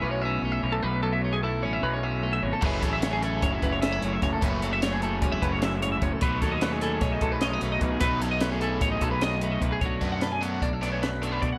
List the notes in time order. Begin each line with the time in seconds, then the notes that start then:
Already playing: B2 A3 C#4 E4
0.02 B1 F#3 B4
0.11 C#5
0.22 C#4 E5
0.42 B1 A3 C#5
0.52 E5
0.63 B1 B2 C#5
0.72 A4
0.83 B1 B2 B4
1.03 F#3 A4
1.13 E5
1.22 A3 C#5
1.33 G#4
1.43 E4 A4
1.63 A1 C#4 C#5
1.73 E5
1.83 B1 F#3 B4
1.94 C#5
2.03 C#4 E5
2.23 A3 C#5
2.33 E5
2.43 G#1 B2 C#5
2.53 A4
2.61 F#1 F#2 C#3 F#3 A3 C#4 B4, kick, crash
2.65 E4 G#4
2.82 A1 F#3 A4, kick, snare, closed hi-hat
2.93 E5
3.02 A3 C#5, snare, closed hi-hat
3.13 G#4
3.23 G#4 A4, closed hi-hat
3.42 F#1 E4 C#5, kick, closed hi-hat
3.53 E5
3.62 F#1 F#3 B4, kick, closed hi-hat
3.72 C#5
3.82 C#4 E5, snare, closed hi-hat
3.92 E4
4.02 F#1 A3 C#5, closed hi-hat
4.13 E5
4.22 F#1 F#2 C#5, kick, snare, closed hi-hat
4.33 A4
4.41 F#1 F#2 C#3 F#3 A3 C#4 B4, kick, closed hi-hat
4.62 F#3 A4, closed hi-hat
4.73 E5
4.82 A3 C#5, snare, closed hi-hat
4.93 G#4
5.02 G#4 A4, closed hi-hat
5.22 E1 C#4 C#5, kick, closed hi-hat
5.32 E4 E5
5.42 F#1 F#3 B4, kick, closed hi-hat
5.52 C#5
5.61 F#2 E5, snare, closed hi-hat
5.82 G#2 C#5, closed hi-hat
5.92 E5
6.01 F#1 A2 C#5, kick, closed hi-hat
6.13 A4
6.21 B1 B2 F#3 A3 D#4 B4, kick, closed hi-hat
6.42 D#2 F#3 A4, kick, snare, closed hi-hat
6.52 D#5
6.61 A3 B4, snare, closed hi-hat
6.72 G#4
6.81 G#4 A4, snare, closed hi-hat
7.01 B1 D#4 C#5, kick, snare, closed hi-hat
7.12 D#5
7.21 B1 F#3 A4, kick, closed hi-hat
7.32 B4
7.41 C#4 D#5, snare, closed hi-hat
7.53 D#4
7.61 B1 A3 B4, snare, closed hi-hat
7.72 D#5
7.81 B1 B2 B4, kick, closed hi-hat
7.91 G#4
8.00 B1 B2 F#3 A3 D#4 B4, kick, closed hi-hat
8.22 F#3 A4, snare, closed hi-hat
8.31 D#5
8.41 A3 B4, snare, closed hi-hat
8.52 G#4
8.61 G#4 A4, closed hi-hat
8.81 A1 D#4 C#5, kick, closed hi-hat
8.92 D#5
9.01 B1 F#3 A4, kick, closed hi-hat
9.11 B4
9.21 D#4 D#5, snare, closed hi-hat
9.41 A3 B4, closed hi-hat
9.52 D#5
9.61 B1 B2 B4, kick, closed hi-hat
9.72 G#4
9.81 B1 B2 F#3 A3 D4 C#5, kick, closed hi-hat
9.86 F#4
10.01 F#2 B2 F#3 B3 D4 B4, kick, snare, closed hi-hat
10.12 F#5
10.21 A4 B4, snare, closed hi-hat
10.32 G#5
10.41 B2 F#3 B3 D4 F#5, closed hi-hat
10.62 B1 D4 D5, kick, closed hi-hat
10.73 E5
10.81 B2 F#3 A3 B3 D4 D5, snare, closed hi-hat
10.92 C#5
11.03 F#2 B4, snare, closed hi-hat
11.22 B2 F#3 B3 D4 A4, closed hi-hat
11.32 B4
11.42 B2 D5, kick, closed hi-hat
11.52 F#5